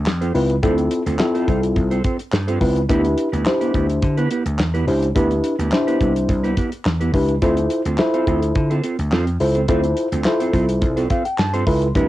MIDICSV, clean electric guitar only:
0, 0, Header, 1, 3, 480
1, 0, Start_track
1, 0, Tempo, 566038
1, 535, Time_signature, 4, 2, 24, 8
1, 10246, End_track
2, 0, Start_track
2, 0, Title_t, "Clean electric guitar"
2, 0, Program_c, 0, 27
2, 179, Note_on_c, 0, 72, 75
2, 183, Note_on_c, 0, 69, 74
2, 186, Note_on_c, 0, 65, 67
2, 189, Note_on_c, 0, 60, 68
2, 282, Note_off_c, 0, 60, 0
2, 285, Note_off_c, 0, 65, 0
2, 288, Note_off_c, 0, 69, 0
2, 289, Note_off_c, 0, 72, 0
2, 530, Note_on_c, 0, 60, 74
2, 535, Note_on_c, 0, 65, 77
2, 538, Note_on_c, 0, 69, 79
2, 541, Note_on_c, 0, 72, 101
2, 649, Note_off_c, 0, 72, 0
2, 653, Note_off_c, 0, 69, 0
2, 657, Note_off_c, 0, 65, 0
2, 669, Note_off_c, 0, 60, 0
2, 899, Note_on_c, 0, 72, 60
2, 903, Note_on_c, 0, 69, 60
2, 908, Note_on_c, 0, 65, 54
2, 910, Note_on_c, 0, 60, 56
2, 997, Note_off_c, 0, 72, 0
2, 999, Note_off_c, 0, 69, 0
2, 1001, Note_off_c, 0, 65, 0
2, 1002, Note_off_c, 0, 60, 0
2, 1139, Note_on_c, 0, 72, 86
2, 1144, Note_on_c, 0, 69, 79
2, 1147, Note_on_c, 0, 65, 75
2, 1150, Note_on_c, 0, 60, 73
2, 1242, Note_off_c, 0, 60, 0
2, 1246, Note_off_c, 0, 65, 0
2, 1251, Note_off_c, 0, 69, 0
2, 1252, Note_on_c, 0, 60, 64
2, 1254, Note_off_c, 0, 72, 0
2, 1256, Note_on_c, 0, 65, 58
2, 1261, Note_on_c, 0, 69, 64
2, 1264, Note_on_c, 0, 72, 73
2, 1362, Note_off_c, 0, 60, 0
2, 1364, Note_off_c, 0, 65, 0
2, 1366, Note_off_c, 0, 69, 0
2, 1367, Note_off_c, 0, 72, 0
2, 1619, Note_on_c, 0, 72, 72
2, 1623, Note_on_c, 0, 69, 81
2, 1627, Note_on_c, 0, 65, 61
2, 1630, Note_on_c, 0, 60, 65
2, 1720, Note_off_c, 0, 60, 0
2, 1724, Note_off_c, 0, 65, 0
2, 1728, Note_off_c, 0, 69, 0
2, 1731, Note_off_c, 0, 72, 0
2, 1731, Note_on_c, 0, 60, 62
2, 1734, Note_on_c, 0, 65, 64
2, 1738, Note_on_c, 0, 69, 64
2, 1741, Note_on_c, 0, 72, 67
2, 1841, Note_off_c, 0, 60, 0
2, 1843, Note_off_c, 0, 65, 0
2, 1845, Note_off_c, 0, 69, 0
2, 1846, Note_off_c, 0, 72, 0
2, 2098, Note_on_c, 0, 72, 86
2, 2102, Note_on_c, 0, 69, 88
2, 2106, Note_on_c, 0, 65, 83
2, 2109, Note_on_c, 0, 60, 74
2, 2201, Note_off_c, 0, 60, 0
2, 2204, Note_off_c, 0, 65, 0
2, 2207, Note_off_c, 0, 69, 0
2, 2208, Note_off_c, 0, 72, 0
2, 2450, Note_on_c, 0, 59, 97
2, 2454, Note_on_c, 0, 64, 98
2, 2458, Note_on_c, 0, 67, 97
2, 2460, Note_on_c, 0, 71, 110
2, 2567, Note_off_c, 0, 71, 0
2, 2571, Note_off_c, 0, 67, 0
2, 2575, Note_off_c, 0, 64, 0
2, 2589, Note_off_c, 0, 59, 0
2, 2816, Note_on_c, 0, 71, 67
2, 2820, Note_on_c, 0, 67, 64
2, 2824, Note_on_c, 0, 64, 57
2, 2827, Note_on_c, 0, 59, 47
2, 2915, Note_off_c, 0, 71, 0
2, 2917, Note_off_c, 0, 67, 0
2, 2919, Note_off_c, 0, 64, 0
2, 2920, Note_off_c, 0, 59, 0
2, 3057, Note_on_c, 0, 71, 75
2, 3062, Note_on_c, 0, 67, 81
2, 3066, Note_on_c, 0, 64, 71
2, 3068, Note_on_c, 0, 59, 73
2, 3160, Note_off_c, 0, 59, 0
2, 3164, Note_off_c, 0, 64, 0
2, 3168, Note_off_c, 0, 67, 0
2, 3171, Note_off_c, 0, 71, 0
2, 3171, Note_on_c, 0, 59, 58
2, 3175, Note_on_c, 0, 64, 66
2, 3178, Note_on_c, 0, 67, 61
2, 3181, Note_on_c, 0, 71, 62
2, 3281, Note_off_c, 0, 59, 0
2, 3283, Note_off_c, 0, 64, 0
2, 3285, Note_off_c, 0, 67, 0
2, 3286, Note_off_c, 0, 71, 0
2, 3539, Note_on_c, 0, 71, 87
2, 3543, Note_on_c, 0, 67, 76
2, 3547, Note_on_c, 0, 64, 81
2, 3549, Note_on_c, 0, 59, 73
2, 3642, Note_off_c, 0, 59, 0
2, 3646, Note_off_c, 0, 64, 0
2, 3650, Note_off_c, 0, 67, 0
2, 3652, Note_on_c, 0, 59, 65
2, 3653, Note_off_c, 0, 71, 0
2, 3656, Note_on_c, 0, 64, 60
2, 3660, Note_on_c, 0, 67, 70
2, 3663, Note_on_c, 0, 71, 70
2, 3762, Note_off_c, 0, 59, 0
2, 3763, Note_off_c, 0, 64, 0
2, 3765, Note_off_c, 0, 67, 0
2, 3767, Note_off_c, 0, 71, 0
2, 4018, Note_on_c, 0, 71, 88
2, 4023, Note_on_c, 0, 67, 81
2, 4026, Note_on_c, 0, 64, 79
2, 4029, Note_on_c, 0, 59, 70
2, 4123, Note_off_c, 0, 59, 0
2, 4127, Note_off_c, 0, 64, 0
2, 4129, Note_off_c, 0, 67, 0
2, 4132, Note_off_c, 0, 71, 0
2, 4372, Note_on_c, 0, 59, 85
2, 4377, Note_on_c, 0, 64, 84
2, 4380, Note_on_c, 0, 67, 90
2, 4382, Note_on_c, 0, 71, 84
2, 4490, Note_off_c, 0, 71, 0
2, 4495, Note_off_c, 0, 67, 0
2, 4498, Note_off_c, 0, 64, 0
2, 4510, Note_off_c, 0, 59, 0
2, 4739, Note_on_c, 0, 71, 64
2, 4743, Note_on_c, 0, 67, 70
2, 4746, Note_on_c, 0, 64, 55
2, 4750, Note_on_c, 0, 59, 53
2, 4836, Note_off_c, 0, 71, 0
2, 4838, Note_off_c, 0, 67, 0
2, 4840, Note_off_c, 0, 64, 0
2, 4842, Note_off_c, 0, 59, 0
2, 4979, Note_on_c, 0, 71, 91
2, 4983, Note_on_c, 0, 67, 78
2, 4987, Note_on_c, 0, 64, 68
2, 4989, Note_on_c, 0, 59, 63
2, 5081, Note_off_c, 0, 59, 0
2, 5085, Note_off_c, 0, 64, 0
2, 5088, Note_off_c, 0, 67, 0
2, 5091, Note_on_c, 0, 59, 64
2, 5092, Note_off_c, 0, 71, 0
2, 5095, Note_on_c, 0, 64, 64
2, 5098, Note_on_c, 0, 67, 68
2, 5102, Note_on_c, 0, 71, 78
2, 5201, Note_off_c, 0, 59, 0
2, 5203, Note_off_c, 0, 64, 0
2, 5205, Note_off_c, 0, 67, 0
2, 5206, Note_off_c, 0, 71, 0
2, 5459, Note_on_c, 0, 71, 84
2, 5462, Note_on_c, 0, 67, 78
2, 5467, Note_on_c, 0, 64, 70
2, 5469, Note_on_c, 0, 59, 62
2, 5561, Note_off_c, 0, 59, 0
2, 5566, Note_off_c, 0, 64, 0
2, 5568, Note_off_c, 0, 67, 0
2, 5571, Note_on_c, 0, 59, 62
2, 5572, Note_off_c, 0, 71, 0
2, 5576, Note_on_c, 0, 64, 64
2, 5579, Note_on_c, 0, 67, 62
2, 5582, Note_on_c, 0, 71, 65
2, 5681, Note_off_c, 0, 59, 0
2, 5683, Note_off_c, 0, 64, 0
2, 5685, Note_off_c, 0, 67, 0
2, 5687, Note_off_c, 0, 71, 0
2, 5939, Note_on_c, 0, 71, 71
2, 5944, Note_on_c, 0, 67, 67
2, 5947, Note_on_c, 0, 64, 69
2, 5950, Note_on_c, 0, 59, 66
2, 6044, Note_off_c, 0, 59, 0
2, 6046, Note_off_c, 0, 64, 0
2, 6049, Note_off_c, 0, 67, 0
2, 6051, Note_off_c, 0, 71, 0
2, 6292, Note_on_c, 0, 60, 77
2, 6297, Note_on_c, 0, 65, 80
2, 6300, Note_on_c, 0, 69, 82
2, 6303, Note_on_c, 0, 72, 84
2, 6411, Note_off_c, 0, 72, 0
2, 6415, Note_off_c, 0, 69, 0
2, 6419, Note_off_c, 0, 65, 0
2, 6430, Note_off_c, 0, 60, 0
2, 6659, Note_on_c, 0, 72, 62
2, 6663, Note_on_c, 0, 69, 57
2, 6667, Note_on_c, 0, 65, 52
2, 6670, Note_on_c, 0, 60, 53
2, 6756, Note_off_c, 0, 72, 0
2, 6758, Note_off_c, 0, 69, 0
2, 6761, Note_off_c, 0, 65, 0
2, 6762, Note_off_c, 0, 60, 0
2, 6899, Note_on_c, 0, 72, 82
2, 6903, Note_on_c, 0, 69, 86
2, 6907, Note_on_c, 0, 65, 69
2, 6910, Note_on_c, 0, 60, 68
2, 7002, Note_off_c, 0, 60, 0
2, 7006, Note_off_c, 0, 65, 0
2, 7010, Note_off_c, 0, 69, 0
2, 7013, Note_off_c, 0, 72, 0
2, 7013, Note_on_c, 0, 60, 61
2, 7016, Note_on_c, 0, 65, 68
2, 7020, Note_on_c, 0, 69, 71
2, 7023, Note_on_c, 0, 72, 74
2, 7122, Note_off_c, 0, 60, 0
2, 7124, Note_off_c, 0, 65, 0
2, 7126, Note_off_c, 0, 69, 0
2, 7127, Note_off_c, 0, 72, 0
2, 7379, Note_on_c, 0, 72, 78
2, 7383, Note_on_c, 0, 69, 77
2, 7386, Note_on_c, 0, 65, 70
2, 7388, Note_on_c, 0, 60, 63
2, 7481, Note_off_c, 0, 60, 0
2, 7486, Note_off_c, 0, 65, 0
2, 7489, Note_off_c, 0, 69, 0
2, 7491, Note_on_c, 0, 60, 58
2, 7492, Note_off_c, 0, 72, 0
2, 7496, Note_on_c, 0, 65, 54
2, 7499, Note_on_c, 0, 69, 65
2, 7502, Note_on_c, 0, 72, 60
2, 7601, Note_off_c, 0, 60, 0
2, 7604, Note_off_c, 0, 65, 0
2, 7605, Note_off_c, 0, 69, 0
2, 7607, Note_off_c, 0, 72, 0
2, 7733, Note_on_c, 0, 60, 81
2, 7737, Note_on_c, 0, 65, 94
2, 7740, Note_on_c, 0, 69, 98
2, 7744, Note_on_c, 0, 72, 98
2, 7851, Note_off_c, 0, 72, 0
2, 7855, Note_off_c, 0, 69, 0
2, 7859, Note_off_c, 0, 65, 0
2, 7871, Note_off_c, 0, 60, 0
2, 8099, Note_on_c, 0, 72, 62
2, 8103, Note_on_c, 0, 69, 55
2, 8107, Note_on_c, 0, 65, 49
2, 8110, Note_on_c, 0, 60, 45
2, 8196, Note_off_c, 0, 72, 0
2, 8198, Note_off_c, 0, 69, 0
2, 8200, Note_off_c, 0, 65, 0
2, 8202, Note_off_c, 0, 60, 0
2, 8212, Note_on_c, 0, 60, 93
2, 8216, Note_on_c, 0, 65, 88
2, 8220, Note_on_c, 0, 69, 92
2, 8224, Note_on_c, 0, 72, 94
2, 8329, Note_off_c, 0, 72, 0
2, 8333, Note_off_c, 0, 69, 0
2, 8337, Note_off_c, 0, 65, 0
2, 8350, Note_off_c, 0, 60, 0
2, 8581, Note_on_c, 0, 72, 64
2, 8585, Note_on_c, 0, 69, 48
2, 8587, Note_on_c, 0, 65, 49
2, 8591, Note_on_c, 0, 60, 50
2, 8677, Note_off_c, 0, 72, 0
2, 8679, Note_off_c, 0, 69, 0
2, 8681, Note_off_c, 0, 65, 0
2, 8682, Note_off_c, 0, 60, 0
2, 8819, Note_on_c, 0, 72, 78
2, 8824, Note_on_c, 0, 69, 80
2, 8826, Note_on_c, 0, 65, 68
2, 8830, Note_on_c, 0, 60, 69
2, 8921, Note_off_c, 0, 60, 0
2, 8926, Note_off_c, 0, 65, 0
2, 8929, Note_off_c, 0, 69, 0
2, 8932, Note_on_c, 0, 60, 69
2, 8933, Note_off_c, 0, 72, 0
2, 8937, Note_on_c, 0, 65, 70
2, 8939, Note_on_c, 0, 69, 79
2, 8943, Note_on_c, 0, 72, 76
2, 9041, Note_off_c, 0, 60, 0
2, 9044, Note_off_c, 0, 65, 0
2, 9045, Note_off_c, 0, 69, 0
2, 9047, Note_off_c, 0, 72, 0
2, 9299, Note_on_c, 0, 72, 80
2, 9304, Note_on_c, 0, 69, 81
2, 9307, Note_on_c, 0, 65, 74
2, 9310, Note_on_c, 0, 60, 63
2, 9401, Note_off_c, 0, 60, 0
2, 9404, Note_off_c, 0, 65, 0
2, 9409, Note_off_c, 0, 69, 0
2, 9411, Note_off_c, 0, 72, 0
2, 9411, Note_on_c, 0, 60, 64
2, 9415, Note_on_c, 0, 65, 72
2, 9419, Note_on_c, 0, 69, 69
2, 9422, Note_on_c, 0, 72, 69
2, 9521, Note_off_c, 0, 60, 0
2, 9523, Note_off_c, 0, 65, 0
2, 9525, Note_off_c, 0, 69, 0
2, 9526, Note_off_c, 0, 72, 0
2, 9780, Note_on_c, 0, 72, 90
2, 9784, Note_on_c, 0, 69, 81
2, 9787, Note_on_c, 0, 65, 79
2, 9790, Note_on_c, 0, 60, 66
2, 9884, Note_off_c, 0, 60, 0
2, 9887, Note_off_c, 0, 65, 0
2, 9888, Note_off_c, 0, 69, 0
2, 9891, Note_off_c, 0, 72, 0
2, 10132, Note_on_c, 0, 55, 89
2, 10137, Note_on_c, 0, 60, 89
2, 10140, Note_on_c, 0, 64, 99
2, 10143, Note_on_c, 0, 71, 93
2, 10246, Note_off_c, 0, 55, 0
2, 10246, Note_off_c, 0, 60, 0
2, 10246, Note_off_c, 0, 64, 0
2, 10246, Note_off_c, 0, 71, 0
2, 10246, End_track
3, 0, Start_track
3, 0, Title_t, "Muted clean electric guitar strokes"
3, 53, Note_on_c, 9, 29, 40
3, 138, Note_off_c, 9, 29, 0
3, 419, Note_on_c, 9, 29, 45
3, 504, Note_off_c, 9, 29, 0
3, 660, Note_on_c, 9, 29, 43
3, 744, Note_off_c, 9, 29, 0
3, 774, Note_on_c, 9, 29, 47
3, 859, Note_off_c, 9, 29, 0
3, 1494, Note_on_c, 9, 29, 39
3, 1578, Note_off_c, 9, 29, 0
3, 1858, Note_on_c, 9, 29, 44
3, 1943, Note_off_c, 9, 29, 0
3, 1972, Note_on_c, 9, 29, 46
3, 2057, Note_off_c, 9, 29, 0
3, 2338, Note_on_c, 9, 29, 50
3, 2422, Note_off_c, 9, 29, 0
3, 2577, Note_on_c, 9, 29, 49
3, 2662, Note_off_c, 9, 29, 0
3, 2690, Note_on_c, 9, 29, 48
3, 2775, Note_off_c, 9, 29, 0
3, 3413, Note_on_c, 9, 29, 43
3, 3498, Note_off_c, 9, 29, 0
3, 3785, Note_on_c, 9, 29, 43
3, 3869, Note_off_c, 9, 29, 0
3, 3891, Note_on_c, 9, 29, 43
3, 3976, Note_off_c, 9, 29, 0
3, 4134, Note_on_c, 9, 29, 44
3, 4218, Note_off_c, 9, 29, 0
3, 4261, Note_on_c, 9, 29, 48
3, 4345, Note_off_c, 9, 29, 0
3, 4500, Note_on_c, 9, 29, 46
3, 4585, Note_off_c, 9, 29, 0
3, 4612, Note_on_c, 9, 29, 42
3, 4697, Note_off_c, 9, 29, 0
3, 5219, Note_on_c, 9, 29, 47
3, 5304, Note_off_c, 9, 29, 0
3, 5332, Note_on_c, 9, 29, 43
3, 5417, Note_off_c, 9, 29, 0
3, 5699, Note_on_c, 9, 29, 52
3, 5784, Note_off_c, 9, 29, 0
3, 5813, Note_on_c, 9, 29, 37
3, 5897, Note_off_c, 9, 29, 0
3, 6180, Note_on_c, 9, 29, 39
3, 6265, Note_off_c, 9, 29, 0
3, 6421, Note_on_c, 9, 29, 57
3, 6506, Note_off_c, 9, 29, 0
3, 6533, Note_on_c, 9, 29, 44
3, 6618, Note_off_c, 9, 29, 0
3, 7140, Note_on_c, 9, 29, 44
3, 7225, Note_off_c, 9, 29, 0
3, 7254, Note_on_c, 9, 29, 48
3, 7339, Note_off_c, 9, 29, 0
3, 7620, Note_on_c, 9, 29, 48
3, 7705, Note_off_c, 9, 29, 0
3, 7861, Note_on_c, 9, 29, 54
3, 7946, Note_off_c, 9, 29, 0
3, 7974, Note_on_c, 9, 29, 47
3, 8059, Note_off_c, 9, 29, 0
3, 8339, Note_on_c, 9, 29, 50
3, 8424, Note_off_c, 9, 29, 0
3, 8453, Note_on_c, 9, 29, 40
3, 8538, Note_off_c, 9, 29, 0
3, 9173, Note_on_c, 9, 29, 37
3, 9258, Note_off_c, 9, 29, 0
3, 9541, Note_on_c, 9, 29, 53
3, 9625, Note_off_c, 9, 29, 0
3, 9653, Note_on_c, 9, 29, 50
3, 9737, Note_off_c, 9, 29, 0
3, 10021, Note_on_c, 9, 29, 53
3, 10106, Note_off_c, 9, 29, 0
3, 10246, End_track
0, 0, End_of_file